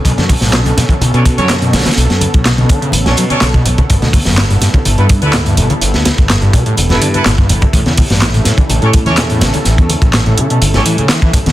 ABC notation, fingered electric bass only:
X:1
M:4/4
L:1/16
Q:1/4=125
K:Bm
V:1 name="Fingered electric bass" clef=bass
B,,, F,, z B,,,2 z3 B,,, B,,2 F,,3 B,,, z | B,,, F,, z B,,,2 z3 A,,, B,,2 z B,,, z B,,, z | G,,, D,, z G,,,2 z3 G,,, G,,2 D,,3 G,,, z | G,,, D,, z G,,,2 z3 E,,, G,,2 z G,,, z G,,, z |
A,,, E,, z A,,,2 z3 A,,, A,,2 E,,3 A,,, z | A,,, E,, z A,,,2 z3 G,,, A,,2 z4 E,, |]